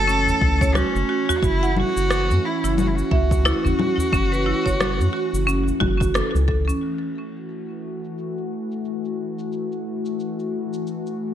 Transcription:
Already playing: F#1 E3 A3 C#4 A4
0.08 C#4, shaker
0.27 udu, shaker
0.41 C#2, kick
0.61 C#5, kick, shaker
0.75 C#4 F#4, cross-stick, low conga, shaker
0.95 F#1, shaker
1.09 F#4
1.29 F#4, udu, shaker
1.38 F#4
1.42 F#1 E4 F#4, kick, shaker
1.63 F#5, shaker
1.77 F#4, low conga
1.97 F#1, shaker
2.11 cross-stick, shaker
2.30 F#2, shaker
2.45 E4
2.64 F#1 E4, shaker
2.78 F#4, low conga, shaker
2.87 E4
2.95 F#4, shaker
3.11 C#2 E5, kick
3.31 kick, shaker
3.45 E4, cross-stick, shaker
3.65 F#1 C#4, udu, shaker
3.79 F#4, low conga
3.98 udu, shaker
4.13 F#1 C#4, kick, shaker
4.32 B4, shaker
4.46 E4
4.66 F#1 C#5, kick, shaker
4.81 cross-stick, low conga, shaker
5.00 F#2, shaker
5.13 F#4
5.33 F#1, shaker
5.47 C#4, shaker
5.67 udu, shaker
5.80 F#1 F#4, kick, low conga
6.00 F#4, kick, shaker
6.14 A4, cross-stick, shaker
6.35 C#2, shaker
6.48 A4, kick
6.68 C#4, udu, shaker
6.82 E3 A3 F#4, crash
7.03 shaker
7.36 shaker
7.50 shaker
7.70 shaker
8.04 shaker
8.18 shaker
8.38 shaker
8.71 shaker
8.85 shaker
9.05 shaker
9.39 shaker
9.52 shaker
9.72 shaker
10.06 shaker
10.20 shaker
10.39 shaker
10.73 shaker
10.87 shaker
11.07 shaker

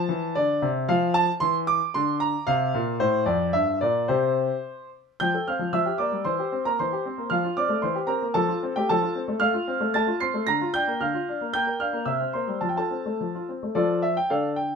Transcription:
Already playing: A5
0.09 E3
0.35 D3 D5
0.62 C3
0.89 F3 F5
1.14 A5
1.40 E3 C6
1.67 D6
1.94 D3 C6
2.20 A#5
2.47 C3 F5
2.74 A#2
3.00 A2 C5
3.26 F2 D5
3.53 G2 E5
3.81 A#2 D5
4.08 C3 C4 G4 C5
5.20 F3 G5 G6
5.34 A4
5.48 C4 F5 F6
5.59 F3
5.73 F3 E5 E6
5.86 G4
5.98 A#3 D5 D6
6.12 G3
6.24 E3 C5 C6
6.39 G4
6.52 C4
6.65 A#3 A#4 A#5
6.79 E3 C5 C6
6.93 G4
7.06 C4
7.18 A#3
7.30 F3 F5 F6
7.44 F4
7.57 C4 D5 D6
7.69 A3
7.82 E3 C5 C6
7.95 G4
8.07 C4 A#4 A#5
8.22 A#3
8.34 F3 A4 A5
8.48 F4
8.63 C4
8.76 A3 G4 G5
8.89 F3 A4 A5
9.02 F4
9.15 C4
9.28 A3
9.40 A3 F5 F6
9.54 F4
9.68 C4
9.80 A3
9.94 A3 A5 A6
10.07 F4
10.20 C4 C6 C7
10.34 A3
10.47 D3 A#5 A#6
10.61 F4
10.74 D4 G5 G6
10.87 A#3
11.00 D3 F5 F6
11.14 F4
11.28 D4
11.41 A#3
11.53 A#3 G5 G6
11.67 A#4
11.80 D4 F5 F6
11.93 A#3
12.05 C3 E5 E6
12.20 C4
12.33 A#3 C5 C6
12.47 G3
12.61 F3 A5
12.69 G5
12.76 F4 A4 A5
12.90 C4
13.06 A3
13.21 F3
13.35 F4
13.49 C4
13.63 A3
13.75 F3 F4 A4 D5
14.02 E5
14.17 G5
14.30 D3 A4 D5 F5
14.56 G5

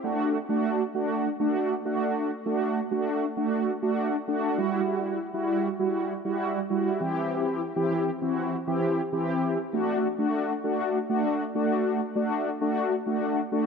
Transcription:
0.04 A3 D4 F#4
0.49 A3 D4 F#4
0.95 A3 D4 F#4
1.40 A3 D4 F#4
1.85 A3 D4 F#4
2.46 A3 D4 F#4
2.91 A3 D4 F#4
3.37 A3 D4 F#4
3.82 A3 D4 F#4
4.28 A3 D4 F#4
4.58 G3 E4 F#4
5.34 G3 E4 F#4
5.79 G3 E4 F#4
6.25 G3 E4 F#4
6.70 G3 E4 F#4
7.01 E3 C4 E4 G4
7.76 E3 C4 E4 G4
8.22 E3 C4 E4 F#4
8.67 E3 C4 E4 G4
9.12 E3 C4 E4 G4
9.73 A3 D4 F#4
10.19 A3 D4 F#4
10.64 A3 D4 F#4
11.10 A3 D4 F#4
11.55 A3 D4 F#4
12.16 A3 D4 F#4
12.61 A3 D4 F#4
13.06 A3 D4 F#4
13.52 A3 D4 F#4

